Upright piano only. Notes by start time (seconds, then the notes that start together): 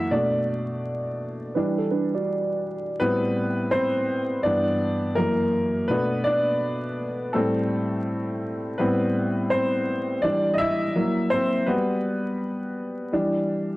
Already playing: F#2 E3 A#3 E4 F#4 E5 F#5
0.11 B2 A3 D4 D5
1.56 E3 G3 D4
3.00 A2 G3 B3 C4 B4
3.71 C4 C5
4.43 G2 E3 B3 D4 D5
5.15 F#2 E3 A#3 A#4
5.88 B2 A3 B3 D4 B4
6.24 D4 D5
7.33 A2 G3 A3 C4 A4
8.78 A2 G3 B3 C4 B4
9.50 C4 C5
10.22 E3 G3 D4 D5
10.54 D#5
10.58 E4 E5
10.96 F#3 A#3 E4
11.30 C4 C5
11.66 G3 B3 F#4 B4
13.12 E3 G3 D4